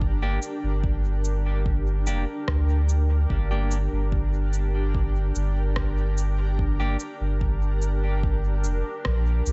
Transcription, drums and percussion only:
0.01 kick loud
0.42 cabasa medium
0.84 kick loud
1.24 cabasa medium
1.66 kick loud
2.07 cabasa medium
2.48 kick loud
2.48 cross-stick loud
2.89 cabasa medium
3.30 kick loud
3.71 cabasa medium
4.12 kick loud
4.53 cabasa medium
4.94 kick loud
5.35 cabasa medium
5.76 kick loud
5.76 cross-stick loud
6.18 cabasa medium
6.59 kick loud
7.00 cabasa medium
7.41 kick loud
7.82 cabasa soft
8.23 kick loud
8.64 cabasa medium
9.05 kick loud
9.05 cross-stick loud
9.46 cabasa medium

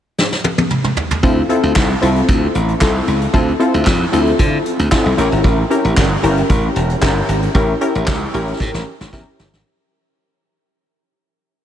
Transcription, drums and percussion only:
0.18 snare medium
0.32 snare medium
0.44 high tom medium
0.58 high tom medium
0.70 mid tom medium
0.84 mid tom medium
0.97 floor tom medium
1.11 floor tom medium
1.23 kick loud
1.23 closed hi-hat medium
1.49 closed hi-hat medium
1.63 closed hi-hat soft
1.76 kick loud
1.76 snare loud
1.76 clap medium
1.90 closed hi-hat soft
2.02 closed hi-hat medium
2.16 closed hi-hat soft
2.28 kick loud
2.28 closed hi-hat medium
2.55 closed hi-hat medium
2.68 closed hi-hat medium
2.81 kick medium
2.81 snare loud
2.81 clap medium
2.95 closed hi-hat soft
3.07 closed hi-hat medium
3.21 closed hi-hat medium
3.34 kick loud
3.34 closed hi-hat medium
3.48 closed hi-hat soft
3.60 closed hi-hat medium
3.74 closed hi-hat medium
3.87 kick loud
3.87 snare loud
3.87 clap medium
4.13 closed hi-hat medium
4.27 closed hi-hat soft
4.39 kick loud
4.39 closed hi-hat medium
4.66 closed hi-hat medium
4.79 closed hi-hat medium
4.92 kick medium
4.92 snare loud
4.92 clap medium
5.06 closed hi-hat soft
5.18 closed hi-hat medium
5.32 closed hi-hat medium
5.44 kick loud
5.44 closed hi-hat medium
5.71 closed hi-hat medium
5.85 closed hi-hat soft
5.97 kick loud
5.97 snare loud
5.97 clap medium
6.24 closed hi-hat medium
6.37 closed hi-hat soft
6.50 kick loud
6.50 closed hi-hat medium
6.76 closed hi-hat medium
6.89 closed hi-hat medium
7.02 kick loud
7.02 snare loud
7.02 clap medium
7.16 closed hi-hat soft
7.29 closed hi-hat medium
7.42 closed hi-hat medium
7.55 kick loud
7.55 closed hi-hat medium
7.81 closed hi-hat medium
7.95 closed hi-hat soft
8.07 kick loud
8.07 snare loud
8.07 clap loud
8.34 closed hi-hat medium
8.48 closed hi-hat medium
8.60 kick loud
8.60 snare medium
8.74 snare medium
9.01 snare medium
9.13 kick medium
9.13 snare medium
9.39 snare medium
9.53 snare medium

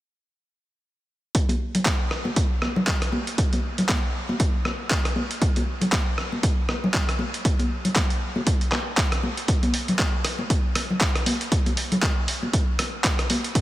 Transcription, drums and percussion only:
1.35 kick loud
1.35 closed hi-hat medium
1.49 closed hi-hat soft
1.49 high conga medium
1.75 closed hi-hat medium
1.75 low conga medium
1.85 kick loud
1.85 clap loud
1.85 closed hi-hat medium
1.85 high conga medium
2.11 cross-stick medium
2.25 high conga medium
2.36 kick loud
2.36 closed hi-hat medium
2.62 cross-stick medium
2.62 high conga medium
2.76 low conga medium
2.87 kick loud
2.87 clap loud
2.87 closed hi-hat medium
3.02 cross-stick medium
3.02 closed hi-hat soft
3.12 high conga loud
3.27 closed hi-hat medium
3.38 kick loud
3.38 closed hi-hat medium
3.53 closed hi-hat soft
3.53 high conga medium
3.78 closed hi-hat medium
3.78 low conga medium
3.89 kick loud
3.89 clap loud
3.89 closed hi-hat medium
3.89 high conga medium
4.29 high conga medium
4.40 kick loud
4.40 closed hi-hat medium
4.65 cross-stick medium
4.65 high conga medium
4.91 kick loud
4.91 clap loud
4.91 closed hi-hat medium
5.05 cross-stick medium
5.05 closed hi-hat soft
5.16 high conga medium
5.31 closed hi-hat medium
5.42 kick loud
5.42 closed hi-hat medium
5.56 closed hi-hat soft
5.56 high conga medium
5.81 closed hi-hat soft
5.81 low conga medium
5.92 kick loud
5.92 clap loud
5.92 closed hi-hat medium
5.92 high conga medium
6.18 cross-stick medium
6.32 high conga medium
6.43 kick loud
6.43 closed hi-hat medium
6.69 cross-stick medium
6.69 high conga medium
6.84 low conga medium
6.94 kick loud
6.94 clap loud
6.94 closed hi-hat medium
7.09 cross-stick medium
7.09 closed hi-hat soft
7.19 high conga medium
7.34 closed hi-hat medium
7.45 kick loud
7.45 closed hi-hat medium
7.59 closed hi-hat soft
7.59 high conga medium
7.85 closed hi-hat soft
7.85 low conga medium
7.96 kick loud
7.96 clap loud
7.96 closed hi-hat medium
7.96 high conga medium
8.10 closed hi-hat soft
8.36 high conga medium
8.47 kick loud
8.47 closed hi-hat medium
8.61 closed hi-hat soft
8.72 cross-stick medium
8.72 clap medium
8.72 high conga medium
8.97 kick loud
8.97 clap loud
8.97 closed hi-hat medium
9.12 cross-stick medium
9.12 closed hi-hat soft
9.23 high conga medium
9.37 closed hi-hat medium
9.48 kick loud
9.48 closed hi-hat medium
9.63 closed hi-hat soft
9.63 high conga medium
9.74 open hi-hat loud
9.88 closed hi-hat soft
9.88 low conga medium
9.99 kick loud
9.99 clap loud
9.99 closed hi-hat medium
10.25 cross-stick medium
10.25 open hi-hat loud
10.39 high conga medium
10.50 kick loud
10.50 closed hi-hat medium
10.75 cross-stick medium
10.75 open hi-hat loud
10.75 high conga medium
10.90 low conga medium
11.01 kick loud
11.01 clap loud
11.01 closed hi-hat medium
11.15 cross-stick medium
11.15 closed hi-hat soft
11.26 open hi-hat loud
11.26 high conga loud
11.41 closed hi-hat medium
11.52 kick loud
11.52 closed hi-hat medium
11.66 closed hi-hat soft
11.66 high conga medium
11.77 open hi-hat loud
11.92 closed hi-hat medium
11.92 low conga medium
12.03 kick loud
12.03 clap loud
12.03 closed hi-hat medium
12.03 high conga medium
12.28 open hi-hat loud
12.43 high conga medium
12.53 kick loud
12.53 closed hi-hat medium
12.79 cross-stick medium
12.79 open hi-hat loud
12.79 high conga medium
13.04 kick loud
13.04 clap loud
13.04 closed hi-hat medium
13.19 cross-stick medium
13.19 closed hi-hat soft
13.30 open hi-hat loud
13.30 high conga medium
13.44 closed hi-hat medium
13.55 kick loud
13.55 closed hi-hat medium

